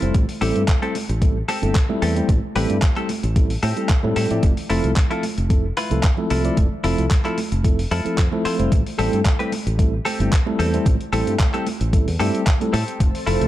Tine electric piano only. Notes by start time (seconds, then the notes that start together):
0.02 G3 A3 C4 E4 C5
0.41 G3 A3 C4 E4 A4
0.82 G3 A3 C4 E4 A4
1.21 G3 A3 C4 E4 A4
1.62 G3 A3 C4 E4 A4
1.89 G3 A3 C4 E4 A4
2.16 G3 A3 C4 E4 C5
2.55 G3 A3 C4 E4 A4
2.96 G3 A3 C4 E4 A4
3.36 G3 A3 C4 E4 A4
3.77 G3 A3 C4 E4 A4
4.03 G3 A3 C4 E4 A4
4.30 F3 A3 C4 E4 D5
4.70 F3 A3 C4 E4 A4
5.10 F3 A3 C4 E4 A4
5.49 F3 A3 C4 E4 A4
5.90 F3 A3 C4 E4 A4
6.17 F3 A3 C4 E4 A4
6.44 F3 A3 C4 E4 D5
6.84 F3 A3 C4 E4 A4
7.25 F3 A3 C4 E4 A4
7.64 F3 A3 C4 E4 A4
8.05 F3 A3 C4 E4 A4
8.32 F3 A3 C4 E4 A4
8.59 G3 A3 C4 E4 C5
8.98 G3 A3 C4 E4 A4
9.39 G3 A3 C4 E4 A4
9.78 G3 A3 C4 E4 A4
10.19 G3 A3 C4 E4 A4
10.46 G3 A3 C4 E4 A4
10.73 G3 A3 C4 E4 C5
11.13 G3 A3 C4 E4 A4
11.54 G3 A3 C4 E4 A4
11.93 G3 A3 C4 E4 A4
12.19 G3 A3 C4 E4 A4
12.61 G3 A3 C4 E4 A4
13.26 F3 A3 C4 E4 A4